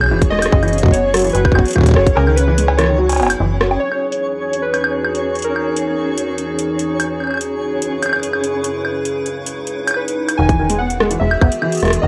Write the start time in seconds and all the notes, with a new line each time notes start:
Already playing: B1 E3 B3 C#4 D#4 F#4 G#4 C#5
0.01 high woodblock
0.04 high woodblock
0.06 high woodblock
0.09 E3, high woodblock
0.11 E1, high woodblock
0.14 high woodblock
0.17 high woodblock
0.19 kick, closed hi-hat, high woodblock
0.30 G#3 D#5, cross-stick
0.39 cross-stick, closed hi-hat, high woodblock
0.46 cross-stick
0.52 F#1 C#3 F#3 C#4 E4 B4, kick
0.63 E3, closed hi-hat, high woodblock
0.68 closed hi-hat
0.73 C#3, closed hi-hat
0.78 closed hi-hat
0.83 F#3, kick
0.86 kick
0.88 kick
0.91 B3 C#5, kick, closed hi-hat
1.14 F#3, cross-stick, closed hi-hat
1.17 closed hi-hat
1.19 closed hi-hat
1.22 E3, closed hi-hat
1.27 closed hi-hat
1.30 closed hi-hat
1.32 F#3 B4, closed hi-hat
1.35 F#1, closed hi-hat
1.45 kick, high woodblock
1.52 F#1 B3 F#4, kick, high woodblock
1.59 kick
1.66 closed hi-hat
1.68 closed hi-hat
1.71 closed hi-hat
1.73 E3, kick, closed hi-hat, high woodblock
1.78 kick
1.81 kick
1.84 kick
1.86 kick, closed hi-hat
1.89 kick
1.91 kick
1.94 F#1 F#3 C#5, kick, cross-stick
2.07 kick, closed hi-hat
2.15 C#2 C#3 A#4, cowbell
2.27 D#3, high woodblock
2.36 C#3 B4, closed hi-hat
2.48 E3
2.58 G#3, closed hi-hat
2.68 cowbell
2.77 E3 C#5, cross-stick, closed hi-hat
2.81 cross-stick
2.84 cross-stick
2.86 D#3, cross-stick
2.98 F#3 F#4
3.09 closed hi-hat, cowbell
3.12 closed hi-hat, cowbell
3.16 B3, closed hi-hat, cowbell
3.20 F#1, closed hi-hat, cowbell
3.23 closed hi-hat, cowbell
3.27 closed hi-hat, cowbell
3.30 closed hi-hat, high woodblock
3.40 F#1 E3
3.61 F#3, cross-stick
3.71 high woodblock
3.80 E2 E3 C#4 D#4 F#4 G#4 C#5
3.92 high woodblock
4.12 closed hi-hat
4.53 closed hi-hat
4.62 B4
4.74 closed hi-hat, high woodblock
4.84 high woodblock
5.05 high woodblock
5.15 closed hi-hat
5.35 closed hi-hat
5.39 closed hi-hat
5.42 A#4, closed hi-hat
5.56 high woodblock
5.76 closed hi-hat
6.18 closed hi-hat
6.38 closed hi-hat
6.59 closed hi-hat
6.79 closed hi-hat
7.00 closed hi-hat, high woodblock
7.10 F#2 C#3 E4 G#4 B4
7.20 high woodblock
7.24 high woodblock
7.27 high woodblock
7.31 high woodblock
7.34 high woodblock
7.37 closed hi-hat, high woodblock
7.82 closed hi-hat
8.03 closed hi-hat, high woodblock
8.06 high woodblock
8.09 high woodblock
8.13 high woodblock
8.16 high woodblock
8.20 closed hi-hat, high woodblock
8.33 high woodblock
8.44 closed hi-hat
8.64 closed hi-hat
8.74 C#2 D#4
8.85 high woodblock
9.05 closed hi-hat
9.26 closed hi-hat
9.46 closed hi-hat
9.67 closed hi-hat
9.87 closed hi-hat, high woodblock
9.91 high woodblock
9.94 B4, high woodblock
10.08 closed hi-hat
10.29 closed hi-hat, high woodblock
10.37 E1 D#3 E3 B3 F#4 G#4 G#5
10.49 E3, kick, closed hi-hat
10.59 D#3
10.70 G#3, closed hi-hat
10.78 B3 F#5
10.90 closed hi-hat
11.00 G#3, cross-stick
11.11 E3, closed hi-hat
11.20 E1 G#3 E5
11.31 high woodblock
11.42 E1 B3, kick, high woodblock
11.52 closed hi-hat
11.62 E3, high woodblock
11.72 closed hi-hat
11.75 closed hi-hat
11.77 closed hi-hat
11.80 G#3, cross-stick, closed hi-hat
11.83 E1, cross-stick, closed hi-hat
11.85 cross-stick, closed hi-hat
11.88 cross-stick, closed hi-hat
11.90 closed hi-hat
11.93 closed hi-hat
12.02 E1 D#3 D#5